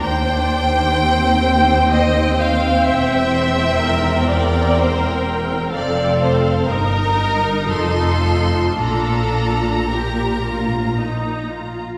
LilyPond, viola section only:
\new Staff \with { instrumentName = "Viola section" } { \time 3/4 \key c \dorian \tempo 4 = 62 << { c''2.~ | c''4 bes'2 | a'4 bes'4 f'4~ | f'4 g'8 f'8 ees'8 f'8 | } \\ { d'4 c'2~ | c'2. | c'4 ees'2 | d'4 r2 | } >> }